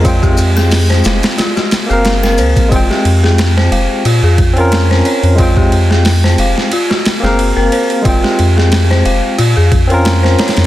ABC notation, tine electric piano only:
X:1
M:4/4
L:1/16
Q:"Swing 16ths" 1/4=90
K:Fm
V:1 name="Tine electric piano"
[A,CFg]8 z3 [B,CBf]4- [B,CBf] | [A,CFg]8 z3 [CDFB]4- [CDFB] | [A,CFg]8 z3 [B,CBf]4- [B,CBf] | [A,CFg]8 z3 [CDFB]4- [CDFB] |]